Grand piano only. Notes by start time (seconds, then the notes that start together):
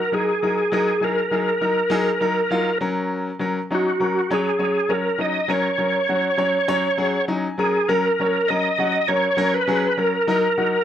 0.12 F#3 D#4 A#4
0.42 F#3 D#4 A#4
0.72 F#3 D#4 A#4
1.01 F#3 D#4 G#4
1.31 F#3 D#4 G#4
1.61 F#3 D#4 A#4
1.90 F#3 D#4 G#4
2.21 F#3 D#4 A#4
2.50 F#3 D#4 F4
2.81 F#3 C#4 A#4
3.39 F#3 C#4 A#4
3.70 F#3 C#4 D#4
4.00 F#3 C#4 A#4
4.30 F#3 C#4 C#5
4.59 F#3 C#4 C#5
4.89 F#3 C#4 C#5
5.18 F#3 C#4 D#4
5.48 F#3 C#4 A#4
5.78 F#3 C#4 A#4
6.09 F#3 C#4 F#4
6.37 F#3 C#4 C#5
6.68 F#3 C#4 C#5
6.97 F#3 C#4 G#4 F#5
7.28 F#3 C#4 D#4 G#5
7.58 F#3 C#4 A#4 A#5
7.89 F#3 C#4 A#4
8.19 F#3 C#4 C#5
8.50 F#3 C#4 A#4
8.78 F#3 C#4 F#4
9.08 F#3 C#4 A#4
9.37 F#3 C#4 A#4
9.67 F#3 C#4 G#4
9.97 F#3 C#4 A#4
10.27 F#3 D#4 A#4
10.58 F#3 D#4 F#4